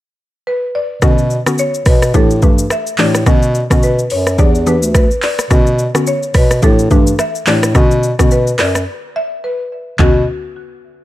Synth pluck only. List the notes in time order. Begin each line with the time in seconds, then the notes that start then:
1.02 D3 B3 C#4 F#4
1.46 D3 B3 C#4 F#4
2.14 E3 A3 D4 G4
2.42 E3 A3 D4 G4
2.98 E3 A3 D4 G4
3.26 D3 B3 C#4 F#4
3.70 D3 B3 C#4 F#4
4.38 E3 B3 D4 G4
4.66 E3 B3 D4 G4
5.50 D3 B3 C#4 F#4
5.95 D3 B3 C#4 F#4
6.62 E3 A3 D4 G4
6.91 E3 A3 D4 G4
7.47 E3 A3 D4 G4
7.75 D3 B3 C#4 F#4
8.19 D3 B3 C#4 F#4
9.99 D3 B3 C#4 F#4